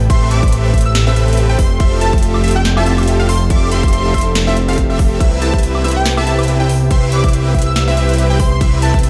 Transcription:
Already playing: analog synth bass A1, analog synth pad C3 A3 G4 B4, harp C4 G4
0.00 harp E4
0.10 supersaw synth C4 G4 A4 B4 E5, synth pluck E5, digital synth lead C6, kick, closed hi-hat, crash
0.22 harp C4
0.31 harp A3, digital synth lead D6, closed hi-hat
0.43 supersaw synth C4 G4 A4 B4 E5, synth pluck E5, kick, closed hi-hat
0.48 closed hi-hat
0.52 harp A3, closed hi-hat
0.64 harp C4
0.74 harp A3, supersaw synth C4 G4 A4 B4 E5, synth pluck E5, kick, closed hi-hat
0.78 closed hi-hat
0.81 closed hi-hat
0.85 harp E4, digital synth lead E6
0.95 harp A3, digital synth lead E6, snare, closed hi-hat
1.07 supersaw synth C4 G4 A4 B4 E5, harp C4, synth pluck E5
1.16 harp A3, supersaw synth C4 G4 A4 B4 E5, synth pluck E5, closed hi-hat
1.28 harp E4, closed hi-hat
1.33 closed hi-hat
1.37 harp A3, closed hi-hat
1.49 supersaw synth C4 G4 A4 B4 G5, harp C4, synth pluck G5
1.59 analog synth bass F1, analog synth pad F3 E5, digital synth lead C6, kick, open hi-hat
1.71 harp F4
1.80 harp A3, supersaw synth C4 F4 G4 A4 E5, synth pluck E5, kick, closed hi-hat, crash
1.92 harp E4
2.01 harp A3, digital synth lead A5, closed hi-hat
2.13 supersaw synth C4 F4 G4 A4 E5, synth pluck E5, kick, closed hi-hat
2.18 closed hi-hat
2.23 harp A3, closed hi-hat
2.34 harp E4, high woodblock
2.44 harp A3, supersaw synth C4 F4 G4 A4 E5, synth pluck E5, closed hi-hat
2.48 closed hi-hat
2.51 closed hi-hat
2.56 harp F4, digital synth lead G5
2.65 harp A3, snare, closed hi-hat
2.77 supersaw synth C4 F4 G4 A4 E5, harp E4, synth pluck E5, digital synth lead A5, high woodblock
2.86 harp A3, supersaw synth C4 F4 G4 A4 E5, synth pluck E5, closed hi-hat
2.98 harp F4, closed hi-hat, high woodblock
3.03 closed hi-hat
3.07 harp A3, closed hi-hat
3.19 supersaw synth C4 F4 G4 A4 F5, harp E4, synth pluck F5
3.29 harp A3, analog synth pad A4, digital synth lead C6, open hi-hat
3.41 harp F4
3.50 harp A3, supersaw synth C4 F4 G4 A4 E5, synth pluck E5, digital synth lead D6, kick, closed hi-hat, crash
3.62 harp E4
3.71 harp A3, digital synth lead C6, closed hi-hat
3.83 supersaw synth C4 F4 G4 A4 E5, harp F4, synth pluck E5, kick, closed hi-hat
3.88 closed hi-hat
3.93 harp A3, digital synth lead C6, closed hi-hat
4.05 harp E4
4.14 supersaw synth C4 F4 G4 A4 E5, synth pluck E5, kick, closed hi-hat
4.18 closed hi-hat
4.21 closed hi-hat
4.26 harp F4
4.35 harp A3, snare, closed hi-hat
4.47 supersaw synth C4 F4 G4 A4 E5, harp E4, synth pluck E5
4.57 harp C4, closed hi-hat
4.68 supersaw synth C4 F4 G4 A4 F5, harp E4, synth pluck F5, closed hi-hat
4.73 closed hi-hat
4.78 harp A4, kick, closed hi-hat
4.90 supersaw synth C4 F4 G4 A4 E5, harp G4, synth pluck E5
4.99 harp F4, kick, open hi-hat
5.11 harp A4
5.20 analog synth bass C2, analog synth pad C3 B3 G4, harp B3, supersaw synth C4 E4 G4 B4 E5, synth pluck E5, kick, closed hi-hat, crash
5.32 harp E4
5.42 harp B3, digital synth lead A5, closed hi-hat
5.54 supersaw synth C4 E4 G4 B4 E5, synth pluck E5, kick, closed hi-hat
5.58 closed hi-hat
5.63 harp B3, closed hi-hat
5.75 harp E4, high woodblock
5.84 harp B3, supersaw synth C4 E4 G4 B4 E5, synth pluck E5, closed hi-hat
5.88 closed hi-hat
5.91 closed hi-hat
5.96 harp G4, digital synth lead G5
6.05 harp B3, snare, closed hi-hat
6.17 supersaw synth C4 E4 G4 B4 E5, harp E4, synth pluck E5, digital synth lead A5, high woodblock
6.27 harp B3, supersaw synth C4 E4 G4 B4 E5, synth pluck E5, closed hi-hat
6.39 closed hi-hat, high woodblock
6.43 closed hi-hat
6.48 harp B3, closed hi-hat
6.60 supersaw synth C4 E4 G4 B4 G5, harp E4, synth pluck G5
6.69 harp B3, open hi-hat
6.81 harp G4
6.91 harp B3, supersaw synth C4 E4 G4 B4 E5, synth pluck E5, digital synth lead C6, kick, closed hi-hat, crash
7.03 harp E4
7.12 harp B3, digital synth lead D6, closed hi-hat
7.24 supersaw synth C4 E4 G4 B4 E5, synth pluck E5, kick, closed hi-hat
7.29 closed hi-hat
7.33 harp B3, closed hi-hat
7.45 harp E4
7.54 harp B3, supersaw synth C4 E4 G4 B4 E5, synth pluck E5, kick, closed hi-hat
7.59 closed hi-hat
7.62 closed hi-hat
7.66 harp G4, digital synth lead E6
7.76 harp B3, digital synth lead E6, snare, closed hi-hat
7.88 supersaw synth C4 E4 G4 B4 E5, harp E4, synth pluck E5
7.97 harp B3, supersaw synth C4 E4 G4 B4 E5, synth pluck E5, closed hi-hat
8.09 harp G4, closed hi-hat
8.14 closed hi-hat
8.18 harp B3, closed hi-hat
8.30 supersaw synth C4 E4 G4 B4 G5, harp E4, synth pluck G5
8.40 digital synth lead C6, kick, open hi-hat
8.51 harp G4
8.61 supersaw synth C4 E4 G4 B4 E5, synth pluck E5, kick, closed hi-hat, crash
8.73 harp E4
8.82 harp B3, digital synth lead A5, closed hi-hat
8.94 supersaw synth C4 E4 G4 B4 E5, synth pluck E5, kick, closed hi-hat
8.99 closed hi-hat
9.03 harp B3, closed hi-hat

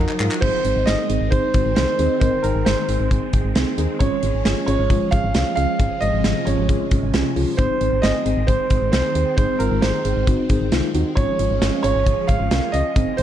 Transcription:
Already playing: string machine F3 F#3 D#4, synth keys D#4 F#4 A#4
0.09 synth pluck D#4, clap
0.20 fm bass G#2, synth keys D#4 F#4 A#4, synth pluck F4, clap
0.31 synth pluck F#4, clap
0.41 fm bass G#1, string machine D#3 G#3 C4, synth keys C4 D#4 G#4, grand piano C5, kick, crash
0.65 fm bass G#1, synth keys C4 D#4 G#4, closed hi-hat
0.76 fm bass G#1
0.86 fm bass G#1, synth keys C4 D#4 G#4, grand piano D#5, snare, closed hi-hat
1.09 fm bass G#1, synth keys C4 D#4 G#4, closed hi-hat
1.21 fm bass G#1
1.30 fm bass G#1, synth keys C4 D#4 G#4, grand piano C5, kick, closed hi-hat
1.54 fm bass G#1, synth keys C4 D#4 F#4, kick, closed hi-hat
1.66 fm bass G#1
1.75 fm bass C2, synth keys C4 D#4 G#4, grand piano C5, snare, closed hi-hat
1.99 fm bass D#2, synth keys C4 D#4 G#4, closed hi-hat
2.20 fm bass G#1, synth keys C4 D#4 A#4, grand piano C5, kick, closed hi-hat
2.42 fm bass G#1, synth keys C4 D#4 G#4, grand piano A#4, closed hi-hat
2.55 fm bass G#1
2.65 fm bass G#1, synth keys C4 D#4 G#4, grand piano C5, snare, closed hi-hat
2.89 fm bass G#1, synth keys C4 D#4 G#4, closed hi-hat
3.00 fm bass G#1
3.11 fm bass G#1, synth keys C4 D#4 G#4, kick, closed hi-hat
3.33 fm bass G#1, synth keys C4 D#4 G#4, kick, closed hi-hat
3.44 fm bass G#1
3.55 fm bass C2, synth keys C4 D#4 G#4, snare, closed hi-hat
3.78 fm bass D#2, synth keys C4 D#4 G#4, closed hi-hat
3.99 fm bass G#1, string machine F3 C#4, synth keys C#4 F4 G#4, grand piano C#5, kick, closed hi-hat
4.23 fm bass G#1, synth keys C#4 F4 G#4, closed hi-hat
4.34 fm bass G#1
4.45 fm bass G#1, synth keys C#4 F4 G#4, snare, closed hi-hat
4.66 fm bass G#1, synth keys C#4 F4 G#4, grand piano C#5, closed hi-hat
4.79 fm bass G#1
4.90 fm bass G#1, synth keys C#4 F4 G#4, kick, closed hi-hat
5.11 fm bass G#1, synth keys C#4 F4 G#4, grand piano F5, kick, closed hi-hat
5.24 fm bass G#1
5.34 fm bass C2, synth keys C#4 F4 G#4, snare, closed hi-hat
5.55 fm bass C#2, synth keys C#4 F4 G#4, grand piano F5, closed hi-hat
5.79 fm bass G#1, string machine C3, synth keys C#4 F4 G#4, kick, closed hi-hat
6.01 fm bass G#1, synth keys C#4 F4 G#4, grand piano D#5, closed hi-hat
6.13 fm bass G#1
6.24 fm bass G#1, synth keys C#4 F4 G#4, snare, closed hi-hat
6.45 fm bass G#1, synth keys C#4 F4 G#4, grand piano C#5, closed hi-hat
6.58 fm bass G#1
6.69 fm bass G#1, synth keys C#4 F4 G#4, kick, closed hi-hat
6.91 fm bass G#1, synth keys C#4 F4 G#4, kick, closed hi-hat
7.03 fm bass G#1
7.14 fm bass C2, synth keys C#4 F4 G#4, snare, closed hi-hat
7.36 fm bass C#2, synth keys C#4 F4 G#4, open hi-hat
7.57 fm bass G#1, string machine D#3 C4, synth keys C4 D#4 G#4, grand piano C5, kick, closed hi-hat
7.81 fm bass G#1, synth keys C4 D#4 G#4, closed hi-hat
7.92 fm bass G#1
8.02 fm bass G#1, synth keys C4 D#4 G#4, grand piano D#5, snare, closed hi-hat
8.26 fm bass G#1, synth keys C4 D#4 G#4, closed hi-hat
8.37 fm bass G#1
8.47 fm bass G#1, synth keys C4 D#4 G#4, grand piano C5, kick, closed hi-hat
8.70 fm bass G#1, synth keys C4 D#4 G#4, kick, closed hi-hat
8.82 fm bass G#1
8.92 fm bass C2, synth keys C4 D#4 G#4, grand piano C5, snare, closed hi-hat
9.15 fm bass D#2, synth keys C4 D#4 G#4, closed hi-hat
9.37 fm bass G#1, synth keys C4 D#4 G#4, grand piano C5, kick, closed hi-hat
9.59 fm bass G#1, synth keys C4 D#4 F4, grand piano A#4, closed hi-hat
9.71 fm bass G#1
9.81 fm bass G#1, synth keys C4 D#4 G#4, grand piano C5, snare, closed hi-hat
10.05 fm bass G#1, synth keys C4 D#4 G#4, closed hi-hat
10.16 fm bass G#1
10.27 fm bass G#1, synth keys C4 D#4 F#4, kick, closed hi-hat
10.49 fm bass G#1, synth keys C4 D#4 G#4, kick, closed hi-hat
10.61 fm bass G#1
10.72 fm bass C2, synth keys C4 D#4 F4, snare, closed hi-hat
10.94 fm bass D#2, synth keys C4 D#4 F#4, closed hi-hat
11.15 fm bass G#1, string machine F3 G#3 C#4, synth keys C#4 F4 G#4, grand piano C#5, kick, closed hi-hat
11.39 fm bass G#1, synth keys C#4 F4 G#4, closed hi-hat
11.51 fm bass G#1
11.62 fm bass G#1, synth keys C#4 F4 G#4, snare, closed hi-hat
11.83 fm bass G#1, synth keys C#4 F4 G#4, grand piano C#5, closed hi-hat
11.95 fm bass G#1
12.07 fm bass G#1, synth keys C#4 F4 G#4, kick, closed hi-hat
12.27 fm bass G#1, synth keys C#4 F4 G#4, grand piano F5, kick, closed hi-hat
12.40 fm bass G#1
12.51 fm bass C2, synth keys C#4 F4 A#4, snare, closed hi-hat
12.72 fm bass C#2, synth keys C#4 F4 G#4, grand piano D#5, closed hi-hat
12.96 fm bass G#1, string machine D#3 G#3 C4, synth keys C4 D#4 G#4, kick, closed hi-hat
13.17 fm bass G#1, synth keys C4 D#4 G#4, grand piano C5, closed hi-hat

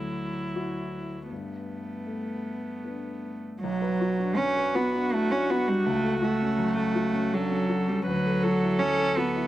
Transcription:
Already playing: grand piano D2 A3, cello F#3, viola E4
0.55 grand piano E4 F#4
1.29 grand piano G2, cello A3, viola B3
2.06 grand piano A3
2.85 grand piano D4 B4
3.61 grand piano B1, cello F#3
3.82 grand piano B4
4.01 grand piano F#4
4.20 grand piano D4
4.36 grand piano F#3, cello C#4, viola F#4
4.57 grand piano B4
4.75 cello B3, grand piano F#4
4.93 grand piano D4
5.13 cello A3, grand piano E4
5.31 cello C#4, grand piano D4
5.50 cello B3, grand piano F#4
5.68 cello G3, grand piano D4
5.86 grand piano C#2, cello A3
6.04 grand piano A4
6.22 cello A3, grand piano F#4
6.42 grand piano C#4
6.58 grand piano F#3
6.76 grand piano A4
6.95 grand piano F#4
7.14 grand piano C#4
7.33 cello F#3, grand piano D4, viola A4
7.51 grand piano C#4
7.69 grand piano F#4
7.88 cello G3, grand piano C#4
8.06 grand piano D2, cello F#3, viola B4
8.26 grand piano A4
8.43 grand piano F#4, viola A4
8.63 grand piano E4
8.79 grand piano F#3, cello C#4
8.99 grand piano A4
9.17 cello B3, grand piano F#4
9.36 grand piano E4

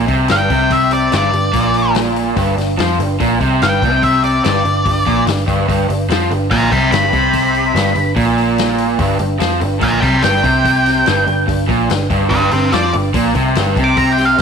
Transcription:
0.07 picked electric bass C2, overdriven electric guitar C3, kick, open hi-hat
0.28 picked electric bass G1, overdriven electric guitar G2, lead electric guitar G5, snare, open hi-hat
0.50 picked electric bass C2, overdriven electric guitar C3, kick, open hi-hat
0.70 lead electric guitar E5, kick, open hi-hat
0.91 lead electric guitar D5, open hi-hat
1.12 picked electric bass G1, overdriven electric guitar G2, lead electric guitar D5, snare, open hi-hat
1.33 picked electric bass G1, overdriven electric guitar G2, open hi-hat
1.53 picked electric bass A#1, overdriven electric guitar A#2, kick, open hi-hat
1.74 open hi-hat
1.95 snare, open hi-hat
2.16 open hi-hat
2.36 picked electric bass G1, overdriven electric guitar G2, kick, open hi-hat
2.57 picked electric bass G1, overdriven electric guitar G2, snare, open hi-hat
2.78 picked electric bass F2, overdriven electric guitar F3, snare, open hi-hat
2.99 picked electric bass G1, overdriven electric guitar G2, open hi-hat
3.20 picked electric bass A#1, overdriven electric guitar A#2, kick, open hi-hat
3.41 picked electric bass C2, overdriven electric guitar C3, kick, open hi-hat
3.62 picked electric bass G1, overdriven electric guitar G2, lead electric guitar G5, snare, open hi-hat
3.82 picked electric bass C2, overdriven electric guitar C3, kick, open hi-hat
4.03 lead electric guitar E5, kick, open hi-hat
4.23 lead electric guitar D5, open hi-hat
4.44 picked electric bass G1, overdriven electric guitar G2, lead electric guitar D5, snare, open hi-hat
4.65 picked electric bass G1, overdriven electric guitar G2, open hi-hat
4.86 picked electric bass G1, overdriven electric guitar G2, kick, open hi-hat
5.07 picked electric bass A#1, overdriven electric guitar A#2, kick, open hi-hat
5.26 picked electric bass G1, overdriven electric guitar G2, snare, open hi-hat
5.47 picked electric bass G1, overdriven electric guitar G2, kick, open hi-hat
5.68 picked electric bass G1, overdriven electric guitar G2, kick, open hi-hat
5.89 picked electric bass G1, overdriven electric guitar G2, open hi-hat
6.09 picked electric bass F2, overdriven electric guitar F3, snare, open hi-hat
6.30 picked electric bass G1, overdriven electric guitar G2, open hi-hat
6.51 picked electric bass A#1, overdriven electric guitar A#2, lead electric guitar G5 A#5, kick, open hi-hat
6.72 picked electric bass C2, overdriven electric guitar C3, lead electric guitar B5 D6, kick, open hi-hat
6.91 picked electric bass G1, overdriven electric guitar G2, lead electric guitar B5, snare, open hi-hat
7.13 picked electric bass C2, overdriven electric guitar C3, kick, open hi-hat
7.33 kick, open hi-hat
7.55 open hi-hat
7.74 picked electric bass G1, overdriven electric guitar G2, snare, open hi-hat
7.95 picked electric bass G1, overdriven electric guitar G2, open hi-hat
8.16 picked electric bass A#1, overdriven electric guitar A#2, kick, open hi-hat
8.38 open hi-hat
8.58 snare, open hi-hat
8.78 open hi-hat
8.99 picked electric bass G1, overdriven electric guitar G2, kick, open hi-hat
9.19 picked electric bass G1, overdriven electric guitar G2, open hi-hat
9.39 picked electric bass F2, overdriven electric guitar F3, snare, open hi-hat
9.60 picked electric bass G1, overdriven electric guitar G2, open hi-hat
9.79 picked electric bass A#1, overdriven electric guitar A#2, lead electric guitar G5, kick, open hi-hat
9.84 lead electric guitar A#5
10.02 picked electric bass C2, overdriven electric guitar C3, lead electric guitar B5 D6, kick, open hi-hat
10.22 picked electric bass G1, overdriven electric guitar G2, lead electric guitar G5, snare, open hi-hat
10.44 picked electric bass C2, overdriven electric guitar C3, kick, open hi-hat
10.65 kick, open hi-hat
10.86 snare, open hi-hat
11.06 picked electric bass G1, overdriven electric guitar G2, snare, open hi-hat
11.27 picked electric bass G1, overdriven electric guitar G2, open hi-hat
11.47 picked electric bass G1, overdriven electric guitar G2, kick, open hi-hat
11.68 picked electric bass A#1, overdriven electric guitar A#2, kick, open hi-hat
11.90 picked electric bass G1, overdriven electric guitar G2, snare, open hi-hat
12.10 picked electric bass G1, overdriven electric guitar G2, kick, open hi-hat
12.29 picked electric bass G1, overdriven electric guitar G2, lead electric guitar B4 G5, kick, open hi-hat
12.51 picked electric bass G1, overdriven electric guitar G2, lead electric guitar G4 E5, open hi-hat
12.72 picked electric bass F2, overdriven electric guitar F3, lead electric guitar D5, snare, open hi-hat
12.93 picked electric bass G1, overdriven electric guitar G2, open hi-hat
13.14 picked electric bass A#1, overdriven electric guitar A#2, kick, open hi-hat
13.35 picked electric bass C2, overdriven electric guitar C3, kick, open hi-hat
13.55 picked electric bass G1, overdriven electric guitar G2, snare, open hi-hat
13.76 picked electric bass C2, overdriven electric guitar C3, kick, open hi-hat
13.84 lead electric guitar D6
13.97 lead electric guitar A#5, kick, open hi-hat
14.13 lead electric guitar G5
14.18 snare, open hi-hat
14.25 lead electric guitar F5
14.38 picked electric bass G1, overdriven electric guitar G2, open hi-hat

